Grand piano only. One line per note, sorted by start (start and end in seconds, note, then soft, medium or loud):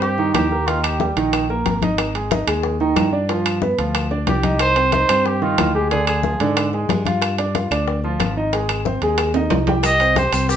0.00 0.13 C4 medium
0.00 0.13 C5 medium
0.18 0.45 D#3 medium
0.18 0.46 D#4 medium
0.52 0.65 A#3 medium
0.52 0.65 A#4 medium
0.68 0.95 D#3 medium
0.68 0.95 D#4 medium
1.01 1.14 G3 medium
1.01 1.14 G4 medium
1.17 1.43 D#3 medium
1.17 1.44 D#4 medium
1.50 1.76 A#3 medium
1.50 1.77 A#4 medium
1.82 2.09 D#4 medium
1.82 2.09 D#5 medium
2.15 2.28 G#3 medium
2.15 2.29 G#4 medium
2.31 2.45 D#4 medium
2.31 2.45 D#5 medium
2.47 2.74 G#3 medium
2.47 2.75 G#4 medium
2.81 3.07 D#3 medium
2.81 3.07 D#4 medium
3.13 3.26 D4 medium
3.13 3.26 D5 medium
3.30 3.56 F3 medium
3.30 3.57 F4 medium
3.62 3.76 B3 medium
3.62 3.76 B4 medium
3.78 4.05 F3 medium
3.78 4.05 F4 medium
4.11 4.38 D4 medium
4.11 4.38 D5 medium
4.44 4.71 D#4 medium
4.44 4.71 D#5 medium
4.76 4.90 C4 medium
4.76 4.90 C5 medium
4.93 5.06 D#4 medium
4.93 5.07 D#5 medium
5.09 5.36 C4 medium
5.09 5.36 C5 medium
5.42 5.69 D#3 medium
5.42 5.69 D#4 medium
5.75 5.88 G#3 medium
5.75 5.88 G#4 medium
5.92 6.18 D3 medium
5.92 6.19 D4 medium
6.25 6.38 F3 medium
6.25 6.38 F4 medium
6.41 6.67 D3 medium
6.41 6.68 D4 medium
6.74 7.00 G#3 medium
6.74 7.00 G#4 medium
7.07 7.33 F4 medium
7.07 7.33 F5 medium
7.39 7.52 D4 medium
7.39 7.52 D5 medium
7.55 7.68 F4 medium
7.55 7.68 F5 medium
7.72 7.98 D4 medium
7.72 7.98 D5 medium
8.04 8.31 F3 medium
8.04 8.31 F4 medium
8.37 8.50 D#4 medium
8.37 8.51 D#5 medium
8.54 8.80 G#3 medium
8.54 8.80 G#4 medium
8.86 8.99 C4 medium
8.86 9.00 C5 medium
9.03 9.29 G#3 medium
9.03 9.29 G#4 medium
9.35 9.62 D#4 medium
9.35 9.62 D#5 medium
9.68 9.95 G4 medium
9.68 9.95 G5 medium
10.00 10.14 C4 medium
10.00 10.14 C5 medium
10.16 10.30 G4 medium
10.16 10.30 G5 medium
10.33 10.56 C4 medium
10.33 10.56 C5 medium